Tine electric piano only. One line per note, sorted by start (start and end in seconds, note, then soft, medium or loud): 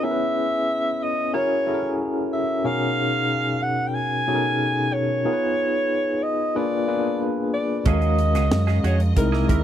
0.03 0.86 B3 medium
0.03 0.86 C#4 medium
0.03 0.86 E4 medium
0.03 0.87 G#4 medium
0.03 0.10 A#4 medium
0.11 0.90 B4 medium
1.33 1.59 C#4 medium
1.33 1.60 E4 medium
1.33 1.60 F#4 medium
1.33 1.60 G#4 medium
1.33 1.60 A#4 medium
1.66 2.29 C#4 medium
1.66 2.29 E4 medium
1.66 2.29 F#4 medium
1.66 2.29 G#4 medium
1.66 1.73 A4 medium
1.74 2.32 A#4 medium
2.64 3.47 B2 medium
2.64 3.47 C#4 medium
2.64 3.47 D#4 medium
2.64 3.47 F#4 medium
2.64 3.47 G#4 medium
2.64 3.48 A#4 medium
4.27 4.89 B2 medium
4.27 4.90 C#4 medium
4.27 4.90 D#4 medium
4.27 4.90 F#4 medium
4.27 4.90 G#4 medium
4.27 4.34 A4 medium
4.35 4.93 A#4 medium
5.25 6.08 B3 medium
5.25 6.08 D#4 medium
5.25 6.08 F4 medium
5.25 6.08 G#4 medium
5.25 5.32 A#4 medium
5.33 6.12 B4 medium
6.55 6.82 A#3 medium
6.55 6.82 D4 medium
6.55 6.82 F4 medium
6.55 6.82 G#4 medium
6.55 6.82 B4 medium
6.87 7.50 A#3 medium
6.87 6.95 B3 medium
6.87 7.50 F4 medium
6.87 7.51 G#4 medium
6.87 7.51 B4 medium
6.94 7.54 D4 medium
7.85 8.69 G#3 medium
7.85 8.69 C#4 medium
7.85 8.70 F#4 medium
7.85 7.93 A4 medium
7.85 8.69 F5 medium
7.93 8.73 A#4 medium
9.16 9.43 G#3 medium
9.16 9.43 C4 medium
9.16 9.43 D#4 medium
9.16 9.43 E4 medium
9.16 9.43 A#4 loud
9.48 9.64 G#3 medium
9.48 9.64 C4 medium
9.48 9.64 D#4 medium
9.48 9.64 E4 medium
9.48 9.64 A#4 medium